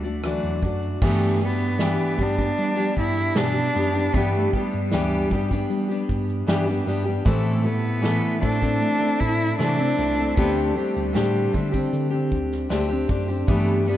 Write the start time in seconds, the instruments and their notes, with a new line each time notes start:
Already playing: tine electric piano D2
0.03 steel-string acoustic guitar A3 D4 F#4 D5, shaker
0.23 steel-string acoustic guitar D3 E3 A3 D4 F#4 D5, cello F#3, cross-stick, shaker
0.43 tine electric piano E2, shaker
0.62 tine electric piano F#2, steel-string acoustic guitar A3 D4 F#4 D5, kick
0.83 shaker
1.02 steel-string acoustic guitar G2 E3 G3 B3 D4 G4, tine electric piano G2, cello A3, kick, crash
1.22 shaker
1.40 steel-string acoustic guitar G3 B3 D4 G4, shaker
1.44 cello B3
1.60 shaker
1.79 steel-string acoustic guitar G2 E3 G3 B3 D4 G4, snare, shaker
1.99 shaker
2.18 tine electric piano G2, steel-string acoustic guitar G3 B3 D4 G4, kick
2.22 cello D4
2.38 steel-string acoustic guitar G3 B3 D4 G4, kick, shaker
2.57 tine electric piano G3, shaker
2.76 steel-string acoustic guitar G3 B3 D4 G4, shaker
2.97 tine electric piano G2, cello E4, kick
3.16 snare, shaker
3.35 steel-string acoustic guitar G2 E3 G3 B3 D4 G4, tine electric piano B2, cello D4, snare, shaker
3.55 steel-string acoustic guitar G3 B3 D4 G4, shaker
3.75 tine electric piano F#2, steel-string acoustic guitar G3 B3 D4 G4
3.94 steel-string acoustic guitar G3 B3 D4 G4, shaker
4.14 tine electric piano G2, steel-string acoustic guitar G2 E3 G3 B3 D4 G4, cello B3, kick, shaker
4.33 cello A3, shaker
4.53 steel-string acoustic guitar G3 B3 D4 G4, cello G3, kick
4.72 tine electric piano G2, shaker
4.92 tine electric piano D2, steel-string acoustic guitar G2 E3 G3 B3 D4 G4, snare, shaker
5.12 shaker
5.31 tine electric piano G2, steel-string acoustic guitar G3 B3 D4 G4, kick
5.51 steel-string acoustic guitar G3 B3 D4 G4, kick, shaker
5.70 tine electric piano G3, shaker
5.89 steel-string acoustic guitar G3 B3 D4 G4, shaker
6.09 tine electric piano G2, kick
6.29 shaker
6.47 steel-string acoustic guitar G2 E3 G3 B3 D4 G4, tine electric piano G2, snare, shaker
6.67 steel-string acoustic guitar G3 B3 D4 G4, shaker
6.85 tine electric piano G2, steel-string acoustic guitar G3 B3 D4 G4, shaker
7.05 steel-string acoustic guitar G3 B3 D4 G4, shaker
7.25 steel-string acoustic guitar A2 E3 A3 C4 E4 A4, tine electric piano A2, cello A3, kick, shaker
7.46 shaker
7.63 steel-string acoustic guitar A3 E4 A4, cello B3, shaker
7.85 shaker
8.01 steel-string acoustic guitar A2 E3 A3 E4 A4, snare, shaker
8.24 shaker
8.40 tine electric piano A2, steel-string acoustic guitar A3 C4 E4 A4, cello D4, kick
8.61 steel-string acoustic guitar A3 C4 E4 A4, kick, shaker
8.82 tine electric piano A3, shaker
8.99 steel-string acoustic guitar A3 C4 E4 A4, shaker
9.20 tine electric piano A2, cello E4, kick, shaker
9.41 shaker
9.58 steel-string acoustic guitar A2 E3 A3 C4 E4 A4, tine electric piano C3, cello D4, snare, shaker
9.77 steel-string acoustic guitar A3 C4 E4 A4, shaker
9.97 tine electric piano C2, steel-string acoustic guitar A3 C4 E4 A4, shaker
10.16 steel-string acoustic guitar A3 C4 E4 A4, shaker
10.36 tine electric piano D2, steel-string acoustic guitar D3 A3 C4 D4 G4, cello B3, kick, shaker
10.52 cello B3
10.57 cello A3, shaker
10.74 cello G3, steel-string acoustic guitar A3 C4 D4 G4
10.96 tine electric piano D2, shaker
11.13 tine electric piano A2, steel-string acoustic guitar D3 A3 C4 D4 G4, snare, shaker
11.35 shaker
11.52 tine electric piano D3, steel-string acoustic guitar A3 C4 D4 G4, kick
11.72 steel-string acoustic guitar C4 D4 G4, kick, shaker
11.93 tine electric piano D3, shaker
12.10 steel-string acoustic guitar C4 D4 G4, shaker
12.32 tine electric piano D2, kick
12.52 snare, shaker
12.69 tine electric piano D2, steel-string acoustic guitar D3 A3 C4 D4 G4, snare, shaker
12.89 steel-string acoustic guitar C4 D4 G4, shaker
13.08 tine electric piano F#2, steel-string acoustic guitar A3 C4 D4 G4, kick
13.28 steel-string acoustic guitar C4 D4 G4, shaker
13.47 steel-string acoustic guitar G2 E3 G3 B3 D4 G4, tine electric piano G2, cello A3, kick, shaker
13.68 shaker
13.86 steel-string acoustic guitar G3 B3 D4 G4, cello B3, shaker